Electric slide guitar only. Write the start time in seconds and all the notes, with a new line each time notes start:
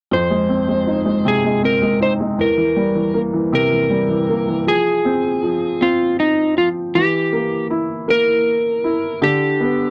0.13 C5
1.28 G#4
1.65 A#4
2.03 C5
2.41 A#4
3.55 A#4
4.68 G#4
5.82 F4
6.20 D#4
6.58 F4
6.95 G4
8.10 A#4
9.24 G4